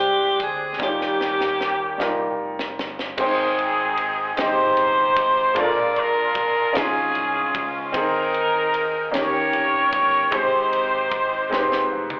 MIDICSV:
0, 0, Header, 1, 6, 480
1, 0, Start_track
1, 0, Key_signature, -4, "major"
1, 0, Tempo, 793651
1, 483, Time_signature, 6, 3, 24, 8
1, 7377, End_track
2, 0, Start_track
2, 0, Title_t, "Alto saxophone"
2, 0, Program_c, 0, 65
2, 0, Note_on_c, 0, 67, 84
2, 253, Note_off_c, 0, 67, 0
2, 263, Note_on_c, 0, 68, 78
2, 477, Note_off_c, 0, 68, 0
2, 503, Note_on_c, 0, 67, 72
2, 1430, Note_off_c, 0, 67, 0
2, 7377, End_track
3, 0, Start_track
3, 0, Title_t, "Horn section"
3, 0, Program_c, 1, 61
3, 0, Note_on_c, 1, 60, 59
3, 0, Note_on_c, 1, 62, 59
3, 0, Note_on_c, 1, 67, 78
3, 247, Note_off_c, 1, 67, 0
3, 247, Note_on_c, 1, 68, 77
3, 464, Note_off_c, 1, 60, 0
3, 466, Note_off_c, 1, 62, 0
3, 485, Note_off_c, 1, 68, 0
3, 499, Note_on_c, 1, 67, 84
3, 501, Note_on_c, 1, 58, 55
3, 503, Note_on_c, 1, 61, 58
3, 1430, Note_off_c, 1, 58, 0
3, 1431, Note_off_c, 1, 61, 0
3, 1453, Note_off_c, 1, 67, 0
3, 1947, Note_on_c, 1, 63, 69
3, 1947, Note_on_c, 1, 68, 99
3, 1950, Note_on_c, 1, 60, 75
3, 2632, Note_off_c, 1, 63, 0
3, 2632, Note_off_c, 1, 68, 0
3, 2633, Note_off_c, 1, 60, 0
3, 2663, Note_on_c, 1, 67, 78
3, 2663, Note_on_c, 1, 72, 105
3, 2669, Note_on_c, 1, 63, 77
3, 3349, Note_off_c, 1, 67, 0
3, 3352, Note_off_c, 1, 63, 0
3, 3374, Note_off_c, 1, 72, 0
3, 3380, Note_on_c, 1, 74, 125
3, 3381, Note_on_c, 1, 65, 81
3, 3383, Note_on_c, 1, 68, 86
3, 3612, Note_off_c, 1, 74, 0
3, 3624, Note_off_c, 1, 65, 0
3, 3627, Note_on_c, 1, 70, 106
3, 3630, Note_on_c, 1, 62, 75
3, 3631, Note_on_c, 1, 65, 80
3, 4069, Note_off_c, 1, 68, 0
3, 4072, Note_off_c, 1, 62, 0
3, 4073, Note_off_c, 1, 65, 0
3, 4095, Note_off_c, 1, 70, 0
3, 4099, Note_on_c, 1, 61, 65
3, 4100, Note_on_c, 1, 68, 110
3, 4102, Note_on_c, 1, 65, 75
3, 4631, Note_off_c, 1, 68, 0
3, 4786, Note_off_c, 1, 61, 0
3, 4788, Note_off_c, 1, 65, 0
3, 4814, Note_on_c, 1, 70, 106
3, 4816, Note_on_c, 1, 63, 85
3, 5503, Note_off_c, 1, 70, 0
3, 5504, Note_off_c, 1, 63, 0
3, 5541, Note_on_c, 1, 70, 85
3, 5544, Note_on_c, 1, 67, 73
3, 5546, Note_on_c, 1, 73, 98
3, 6227, Note_off_c, 1, 70, 0
3, 6228, Note_off_c, 1, 67, 0
3, 6253, Note_off_c, 1, 73, 0
3, 6261, Note_on_c, 1, 63, 77
3, 6261, Note_on_c, 1, 67, 77
3, 6265, Note_on_c, 1, 72, 101
3, 7188, Note_off_c, 1, 63, 0
3, 7188, Note_off_c, 1, 67, 0
3, 7214, Note_off_c, 1, 72, 0
3, 7377, End_track
4, 0, Start_track
4, 0, Title_t, "Grand piano"
4, 0, Program_c, 2, 0
4, 0, Control_c, 2, 64, 127
4, 0, Note_on_c, 2, 46, 56
4, 0, Note_on_c, 2, 56, 55
4, 0, Note_on_c, 2, 60, 42
4, 0, Note_on_c, 2, 62, 54
4, 0, Note_on_c, 2, 72, 65
4, 0, Note_on_c, 2, 79, 52
4, 438, Note_off_c, 2, 56, 0
4, 445, Note_off_c, 2, 79, 0
4, 448, Note_off_c, 2, 72, 0
4, 460, Note_off_c, 2, 62, 0
4, 476, Note_on_c, 2, 55, 68
4, 480, Note_on_c, 2, 63, 63
4, 485, Note_on_c, 2, 51, 59
4, 491, Control_c, 2, 64, 0
4, 492, Note_on_c, 2, 65, 58
4, 493, Note_off_c, 2, 60, 0
4, 495, Note_off_c, 2, 46, 0
4, 498, Note_on_c, 2, 73, 69
4, 613, Control_c, 2, 64, 127
4, 1155, Note_off_c, 2, 55, 0
4, 1157, Note_off_c, 2, 63, 0
4, 1163, Note_off_c, 2, 65, 0
4, 1166, Note_off_c, 2, 73, 0
4, 1181, Note_off_c, 2, 51, 0
4, 1195, Note_on_c, 2, 55, 63
4, 1202, Note_on_c, 2, 63, 63
4, 1208, Note_on_c, 2, 65, 62
4, 1218, Note_on_c, 2, 70, 78
4, 1875, Note_off_c, 2, 55, 0
4, 1878, Note_off_c, 2, 63, 0
4, 1881, Note_off_c, 2, 65, 0
4, 1886, Note_off_c, 2, 70, 0
4, 1918, Note_on_c, 2, 56, 80
4, 1921, Note_on_c, 2, 60, 68
4, 1931, Note_on_c, 2, 44, 65
4, 1931, Note_on_c, 2, 63, 67
4, 1934, Control_c, 2, 64, 0
4, 1934, Note_on_c, 2, 79, 72
4, 1940, Note_on_c, 2, 72, 81
4, 2031, Control_c, 2, 64, 127
4, 2596, Note_off_c, 2, 56, 0
4, 2598, Note_off_c, 2, 60, 0
4, 2603, Note_off_c, 2, 63, 0
4, 2604, Note_off_c, 2, 79, 0
4, 2607, Note_off_c, 2, 72, 0
4, 2624, Note_off_c, 2, 44, 0
4, 2640, Note_on_c, 2, 56, 67
4, 2642, Note_on_c, 2, 60, 60
4, 2650, Note_on_c, 2, 63, 63
4, 2654, Note_on_c, 2, 67, 64
4, 2661, Note_on_c, 2, 75, 70
4, 3316, Note_off_c, 2, 56, 0
4, 3317, Note_off_c, 2, 60, 0
4, 3321, Note_off_c, 2, 63, 0
4, 3323, Note_off_c, 2, 67, 0
4, 3327, Note_off_c, 2, 75, 0
4, 3350, Note_on_c, 2, 56, 81
4, 3355, Note_on_c, 2, 58, 77
4, 3357, Note_on_c, 2, 46, 64
4, 3357, Note_on_c, 2, 62, 74
4, 3365, Note_on_c, 2, 65, 77
4, 3371, Note_on_c, 2, 69, 76
4, 3373, Control_c, 2, 64, 0
4, 3407, Note_off_c, 2, 69, 0
4, 3410, Note_on_c, 2, 70, 90
4, 3487, Control_c, 2, 64, 127
4, 4031, Note_off_c, 2, 56, 0
4, 4033, Note_off_c, 2, 58, 0
4, 4034, Note_off_c, 2, 62, 0
4, 4038, Note_off_c, 2, 65, 0
4, 4055, Note_off_c, 2, 46, 0
4, 4061, Note_off_c, 2, 70, 0
4, 4068, Note_on_c, 2, 61, 71
4, 4076, Note_on_c, 2, 65, 70
4, 4077, Note_on_c, 2, 44, 62
4, 4088, Note_on_c, 2, 68, 82
4, 4091, Control_c, 2, 64, 0
4, 4178, Control_c, 2, 64, 127
4, 4749, Note_off_c, 2, 61, 0
4, 4753, Note_off_c, 2, 65, 0
4, 4759, Note_off_c, 2, 68, 0
4, 4775, Note_off_c, 2, 44, 0
4, 4793, Note_on_c, 2, 60, 91
4, 4804, Note_on_c, 2, 63, 79
4, 4805, Note_on_c, 2, 51, 65
4, 4811, Control_c, 2, 64, 0
4, 4815, Note_on_c, 2, 68, 96
4, 4898, Control_c, 2, 64, 127
4, 5471, Note_off_c, 2, 60, 0
4, 5477, Note_off_c, 2, 63, 0
4, 5483, Note_off_c, 2, 68, 0
4, 5499, Note_off_c, 2, 51, 0
4, 5511, Note_on_c, 2, 58, 71
4, 5516, Note_on_c, 2, 61, 63
4, 5521, Note_on_c, 2, 63, 64
4, 5522, Note_on_c, 2, 51, 59
4, 5528, Note_on_c, 2, 67, 63
4, 5530, Control_c, 2, 64, 0
4, 5537, Note_on_c, 2, 73, 84
4, 5653, Control_c, 2, 64, 127
4, 6190, Note_off_c, 2, 58, 0
4, 6193, Note_off_c, 2, 61, 0
4, 6195, Note_off_c, 2, 63, 0
4, 6199, Note_off_c, 2, 67, 0
4, 6203, Note_off_c, 2, 73, 0
4, 6217, Note_off_c, 2, 51, 0
4, 6232, Note_on_c, 2, 56, 81
4, 6238, Note_on_c, 2, 60, 81
4, 6244, Note_on_c, 2, 44, 65
4, 6244, Note_on_c, 2, 63, 70
4, 6249, Control_c, 2, 64, 0
4, 6250, Note_on_c, 2, 67, 73
4, 6254, Note_on_c, 2, 72, 88
4, 6362, Control_c, 2, 64, 127
4, 6911, Note_off_c, 2, 56, 0
4, 6914, Note_off_c, 2, 60, 0
4, 6917, Note_off_c, 2, 63, 0
4, 6920, Note_off_c, 2, 67, 0
4, 6922, Note_off_c, 2, 72, 0
4, 6939, Note_off_c, 2, 44, 0
4, 6951, Note_on_c, 2, 56, 79
4, 6957, Note_on_c, 2, 60, 75
4, 6963, Note_on_c, 2, 63, 75
4, 6970, Note_on_c, 2, 67, 75
4, 6976, Note_on_c, 2, 71, 67
4, 7008, Note_off_c, 2, 71, 0
4, 7014, Note_on_c, 2, 72, 80
4, 7377, Note_off_c, 2, 56, 0
4, 7377, Note_off_c, 2, 60, 0
4, 7377, Note_off_c, 2, 63, 0
4, 7377, Note_off_c, 2, 67, 0
4, 7377, Note_off_c, 2, 72, 0
4, 7377, End_track
5, 0, Start_track
5, 0, Title_t, "Fingered electric bass"
5, 0, Program_c, 3, 33
5, 5, Note_on_c, 3, 36, 84
5, 225, Note_off_c, 3, 36, 0
5, 244, Note_on_c, 3, 38, 77
5, 465, Note_off_c, 3, 38, 0
5, 482, Note_on_c, 3, 39, 75
5, 1180, Note_off_c, 3, 39, 0
5, 1203, Note_on_c, 3, 36, 75
5, 1425, Note_off_c, 3, 36, 0
5, 1446, Note_on_c, 3, 29, 72
5, 1686, Note_off_c, 3, 29, 0
5, 1686, Note_on_c, 3, 31, 77
5, 1907, Note_off_c, 3, 31, 0
5, 1926, Note_on_c, 3, 32, 93
5, 2621, Note_off_c, 3, 32, 0
5, 2646, Note_on_c, 3, 31, 91
5, 2866, Note_off_c, 3, 31, 0
5, 2889, Note_on_c, 3, 31, 87
5, 3108, Note_off_c, 3, 31, 0
5, 3124, Note_on_c, 3, 32, 89
5, 3345, Note_off_c, 3, 32, 0
5, 3363, Note_on_c, 3, 34, 100
5, 4059, Note_off_c, 3, 34, 0
5, 4088, Note_on_c, 3, 32, 112
5, 4306, Note_off_c, 3, 32, 0
5, 4328, Note_on_c, 3, 36, 94
5, 4546, Note_off_c, 3, 36, 0
5, 4567, Note_on_c, 3, 37, 96
5, 4785, Note_off_c, 3, 37, 0
5, 4804, Note_on_c, 3, 39, 107
5, 5498, Note_off_c, 3, 39, 0
5, 5522, Note_on_c, 3, 39, 115
5, 5742, Note_off_c, 3, 39, 0
5, 5766, Note_on_c, 3, 29, 104
5, 5984, Note_off_c, 3, 29, 0
5, 6004, Note_on_c, 3, 31, 95
5, 6223, Note_off_c, 3, 31, 0
5, 6241, Note_on_c, 3, 32, 102
5, 6937, Note_off_c, 3, 32, 0
5, 6967, Note_on_c, 3, 29, 94
5, 7186, Note_off_c, 3, 29, 0
5, 7207, Note_on_c, 3, 29, 95
5, 7377, Note_off_c, 3, 29, 0
5, 7377, End_track
6, 0, Start_track
6, 0, Title_t, "Drums"
6, 0, Note_on_c, 9, 42, 47
6, 61, Note_off_c, 9, 42, 0
6, 240, Note_on_c, 9, 42, 72
6, 242, Note_on_c, 9, 36, 80
6, 300, Note_off_c, 9, 42, 0
6, 302, Note_off_c, 9, 36, 0
6, 483, Note_on_c, 9, 36, 91
6, 491, Note_on_c, 9, 38, 46
6, 543, Note_off_c, 9, 36, 0
6, 552, Note_off_c, 9, 38, 0
6, 612, Note_on_c, 9, 38, 39
6, 672, Note_off_c, 9, 38, 0
6, 732, Note_on_c, 9, 38, 57
6, 792, Note_off_c, 9, 38, 0
6, 851, Note_on_c, 9, 38, 51
6, 912, Note_off_c, 9, 38, 0
6, 972, Note_on_c, 9, 38, 58
6, 1033, Note_off_c, 9, 38, 0
6, 1209, Note_on_c, 9, 38, 65
6, 1270, Note_off_c, 9, 38, 0
6, 1568, Note_on_c, 9, 38, 67
6, 1629, Note_off_c, 9, 38, 0
6, 1689, Note_on_c, 9, 38, 84
6, 1750, Note_off_c, 9, 38, 0
6, 1810, Note_on_c, 9, 38, 65
6, 1871, Note_off_c, 9, 38, 0
6, 1921, Note_on_c, 9, 49, 90
6, 1924, Note_on_c, 9, 36, 118
6, 1982, Note_off_c, 9, 49, 0
6, 1985, Note_off_c, 9, 36, 0
6, 2169, Note_on_c, 9, 51, 42
6, 2230, Note_off_c, 9, 51, 0
6, 2403, Note_on_c, 9, 51, 60
6, 2464, Note_off_c, 9, 51, 0
6, 2644, Note_on_c, 9, 51, 76
6, 2653, Note_on_c, 9, 38, 93
6, 2704, Note_off_c, 9, 51, 0
6, 2714, Note_off_c, 9, 38, 0
6, 2884, Note_on_c, 9, 51, 45
6, 2944, Note_off_c, 9, 51, 0
6, 3123, Note_on_c, 9, 51, 64
6, 3124, Note_on_c, 9, 36, 90
6, 3184, Note_off_c, 9, 51, 0
6, 3185, Note_off_c, 9, 36, 0
6, 3360, Note_on_c, 9, 51, 72
6, 3363, Note_on_c, 9, 36, 102
6, 3421, Note_off_c, 9, 51, 0
6, 3423, Note_off_c, 9, 36, 0
6, 3606, Note_on_c, 9, 51, 38
6, 3666, Note_off_c, 9, 51, 0
6, 3841, Note_on_c, 9, 51, 58
6, 3842, Note_on_c, 9, 36, 93
6, 3901, Note_off_c, 9, 51, 0
6, 3903, Note_off_c, 9, 36, 0
6, 4083, Note_on_c, 9, 51, 73
6, 4093, Note_on_c, 9, 38, 106
6, 4144, Note_off_c, 9, 51, 0
6, 4153, Note_off_c, 9, 38, 0
6, 4325, Note_on_c, 9, 51, 42
6, 4385, Note_off_c, 9, 51, 0
6, 4565, Note_on_c, 9, 36, 110
6, 4566, Note_on_c, 9, 51, 59
6, 4625, Note_off_c, 9, 36, 0
6, 4626, Note_off_c, 9, 51, 0
6, 4804, Note_on_c, 9, 36, 117
6, 4805, Note_on_c, 9, 51, 79
6, 4864, Note_off_c, 9, 36, 0
6, 4865, Note_off_c, 9, 51, 0
6, 5046, Note_on_c, 9, 51, 46
6, 5106, Note_off_c, 9, 51, 0
6, 5285, Note_on_c, 9, 51, 54
6, 5345, Note_off_c, 9, 51, 0
6, 5526, Note_on_c, 9, 51, 72
6, 5535, Note_on_c, 9, 38, 101
6, 5586, Note_off_c, 9, 51, 0
6, 5596, Note_off_c, 9, 38, 0
6, 5765, Note_on_c, 9, 51, 43
6, 5825, Note_off_c, 9, 51, 0
6, 6003, Note_on_c, 9, 51, 63
6, 6004, Note_on_c, 9, 36, 97
6, 6064, Note_off_c, 9, 36, 0
6, 6064, Note_off_c, 9, 51, 0
6, 6241, Note_on_c, 9, 51, 73
6, 6243, Note_on_c, 9, 36, 107
6, 6301, Note_off_c, 9, 51, 0
6, 6303, Note_off_c, 9, 36, 0
6, 6488, Note_on_c, 9, 51, 45
6, 6549, Note_off_c, 9, 51, 0
6, 6722, Note_on_c, 9, 51, 56
6, 6723, Note_on_c, 9, 36, 97
6, 6783, Note_off_c, 9, 36, 0
6, 6783, Note_off_c, 9, 51, 0
6, 6972, Note_on_c, 9, 38, 62
6, 7032, Note_off_c, 9, 38, 0
6, 7089, Note_on_c, 9, 38, 53
6, 7150, Note_off_c, 9, 38, 0
6, 7319, Note_on_c, 9, 47, 69
6, 7377, Note_off_c, 9, 47, 0
6, 7377, End_track
0, 0, End_of_file